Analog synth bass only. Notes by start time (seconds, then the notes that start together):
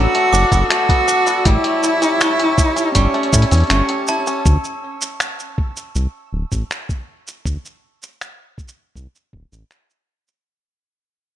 0.33 F#1
0.52 F#1
1.45 A1
2.96 G1
3.33 A2
3.52 E2
3.70 G1
4.46 D2
5.95 C2
6.33 D1
6.52 A1
7.45 D2
8.95 C2
9.33 D1
9.52 A1